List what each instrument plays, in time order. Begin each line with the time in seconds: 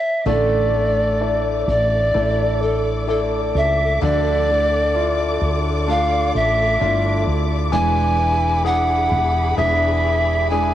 Already playing: pan flute E5
0.26 fretless electric bass A1, steel-string acoustic guitar A2 D3 A3 D4 E4 A4, grand piano A3, string section A4 D5 D6, pan flute D5
0.73 steel-string acoustic guitar A3 D4 E4 A4
1.21 grand piano E4 A4 D5
1.68 fretless electric bass A1, pan flute D5
2.14 fretless electric bass A1, steel-string acoustic guitar A3 D4 E4 A4, grand piano E4 A4 D5
2.62 pan flute A4
3.07 steel-string acoustic guitar A3 D4 E4 A4, grand piano E4 A4 D5, pan flute A4
3.55 fretless electric bass C#2, pan flute E5
4.00 fretless electric bass D2, steel-string acoustic guitar D3 F3 A3 D4 E4 A4, grand piano D3, string section D5, pan flute D5
4.48 steel-string acoustic guitar A3 D4 E4 A4
4.94 grand piano D4 E4 F4
5.42 fretless electric bass D2
5.87 steel-string acoustic guitar A3 D4 A4, grand piano D4 F4, pan flute F5
6.35 fretless electric bass A1, pan flute E5
6.80 fretless electric bass G1, steel-string acoustic guitar A3 D4 E4 A4, grand piano D4 E4 F4
7.27 fretless electric bass D2
7.72 fretless electric bass E1, grand piano E3, steel-string acoustic guitar E3 G#3 D4 E4 B4, string section G#4 B5, pan flute G#5
8.18 steel-string acoustic guitar D4 E4 B4
8.64 grand piano D4 E4 G#4, pan flute F#5
9.12 fretless electric bass E1
9.57 fretless electric bass E1, steel-string acoustic guitar G#3 D4 E4 B4, grand piano D4 E4 G#4, pan flute E5
10.50 steel-string acoustic guitar G#3 D4 E4, grand piano D4 E4 G#4, pan flute G#5
10.54 steel-string acoustic guitar B4